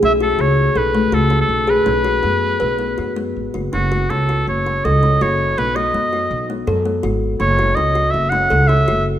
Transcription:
<<
  \new Staff \with { instrumentName = "Oboe" } { \time 5/4 \key fis \dorian \tempo 4 = 163 e''8 a'8 cis''4 b'4 a'8. a'8. b'8~ | b'1 r4 | fis'4 a'4 cis''4 dis''4 cis''4 | b'8 dis''2 r2 r8 |
cis''4 dis''4 e''8 fis''4 e''4 r8 | }
  \new Staff \with { instrumentName = "Kalimba" } { \time 5/4 \key fis \dorian cis'8 fis'8 cis'4 a'8 a8 fis'8 cis'4 gis'8 | cis'8 fis'8 b4 b'8 b8 fis'8 b4 fis'8 | cis'8 fis'8 cis'8 fis'4 cis'8 a'8 cis'8 fis'4 | b8 fis'8 b8 fis'4 b8 a'8 b8 fis'4 |
cis'8 fis'8 cis'8 fis'4 cis'8 a'8 cis'8 fis'4 | }
  \new Staff \with { instrumentName = "Upright bass" } { \clef bass \time 5/4 \key fis \dorian b,,4 cis,4 b,,4 cis,4 b,,4 | b,,4 fis,4 b,,4 fis,4 gis,,8 fis,,8 | fis,,4 cis,4 fis,,4 cis,4 fis,,4 | b,,4 fis,4 b,,4 fis,4 gis,,4 |
fis,,4 cis,4 fis,,4 cis,4 fis,,4 | }
>>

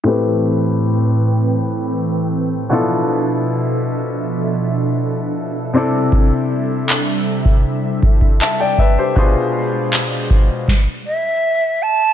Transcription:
<<
  \new Staff \with { instrumentName = "Flute" } { \time 4/4 \key a \minor \tempo 4 = 79 r1 | r1 | r1 | r2 r8 e''4 a''8 | }
  \new Staff \with { instrumentName = "Grand piano" } { \time 4/4 \key a \minor << { r1 | r1 | r2. <e'' a''>16 <d'' g''>16 <b' e''>16 <g' c''>16~ | <g' c''>16 r2. r8. | } \\ { <a, a c' g' b'>2.~ <a, a c' g' b'>8 <b, b d' e' f' a'>8~ | <b, b d' e' f' a'>2.~ <b, b d' e' f' a'>8 <c c' d' e' a'>8~ | <c c' d' e' a'>2.~ <c c' d' e' a'>8 r8 | <b, d' f' gis' b' c''>2 r2 | } >> }
  \new Staff \with { instrumentName = "Analog synth pad" } { \time 4/4 \key a \minor << { <a, e g''>2.~ <a, e g''>8 <b, f e''>8~ | <b, f e''>2.~ <b, f e''>8 <c g e''>8~ | <c g e''>1 | <b, gis f''>2 r2 | } \\ { <c' b'>2.~ <c' b'>8 <d' a'>8~ | <d' a'>1~ | <d' a'>1 | <gis' d''>2 r2 | } >> }
  \new DrumStaff \with { instrumentName = "Drums" } \drummode { \time 4/4 r4 r4 r4 r4 | r4 r4 r4 r4 | bd4 hc8. bd16 r8 bd16 bd16 hc8 bd8 | bd4 hc8 bd8 <bd sn>4 r4 | }
>>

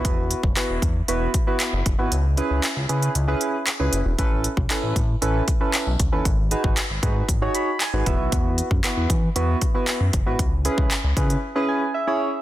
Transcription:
<<
  \new Staff \with { instrumentName = "Synth keys" } { \time 4/4 \key cis \minor \tempo 4 = 116 << { r1 | r1 | r1 | r2 r8 b''8 gis''8 e''8 |
r1 | r2 r8 gis''8 e''4 | } \\ { <b e' fis' b'>8. r16 <b e' fis' b'>8 r8 <b e' fis' b'>8 r16 <b e' fis' b'>8 r8 <b e' fis' b'>16 | r8 <cis' e' gis' b'>8 r8 <cis' e' gis' b'>8 r16 <cis' e' gis' b'>8 r8 <cis' e' gis' b'>8 r16 | <cis' e' a' b'>8 r8 <cis' e' a' b'>8 r8 <cis' e' a' b'>8 r16 <cis' e' a' b'>8 r8 <cis' e' a' b'>16 | r8 <dis' fis' gis' b'>8 r8 <dis' fis' gis' b'>8 r16 <dis' fis' gis' cis''>8 r8 <dis' fis' gis' b'>16 <b e' fis' b'>8~ |
<b e' fis' b'>8. r16 <b e' fis' b'>8 r8 <b e' fis' b'>8 r16 <b e' fis' b'>8 r8 <b e' fis' b'>16 | r8 <cis' e' gis' b'>8 r8 <cis' e' gis' b'>8 r16 <cis' e' gis' b'>8 r8 <cis' e' gis' cis''>8 r16 | } >> }
  \new Staff \with { instrumentName = "Analog synth bass" } { \clef bass \time 4/4 \key cis \minor e,,8. fis,,16 r16 e,,16 e,8 e,,8 r8. fis,,16 fis,,16 gis,,16 | cis,8. cis,16 r16 cis,16 cis8 cis,8 r8. cis,16 fis,,16 e,,16 | a,,8. b,,16 r16 a,,16 a,8 a,,8 r8. b,,16 cis,16 dis,16 | gis,,8. gis,,16 r16 gis,,16 gis,8 gis,,8 r8. gis,,16 e,,16 b,,16 |
e,8. fis,16 r16 e,16 e8 e,8 r8. fis,16 fis,,16 gis,,16 | cis,8. cis,16 r16 cis,16 cis8 r2 | }
  \new DrumStaff \with { instrumentName = "Drums" } \drummode { \time 4/4 <hh bd>8 hh16 bd16 <hc hh>8 <hh bd>8 hh8 <hh bd>8 <hc hh>8 <hh bd>8 | hh8 hh8 <hc hh>8 hh16 hh16 hh8 hh8 <hc hh>8 hh8 | <hh bd>8 hh16 bd16 <hc hh>8 <hh bd>8 hh8 <hh bd>8 <hc hh>8 <hh bd>8 | <hh bd>8 hh16 bd16 <hc hh>8 <hh bd>8 <hh bd>8 hh8 <hc hh>8 <hh bd>8 |
<hh bd>8 hh16 bd16 <hc hh>8 <hh bd>8 hh8 <hh bd>8 <hc hh>8 <hh bd>8 | <hh bd>8 hh16 bd16 <hc hh>8 <hh bd>16 hh16 r4 r4 | }
>>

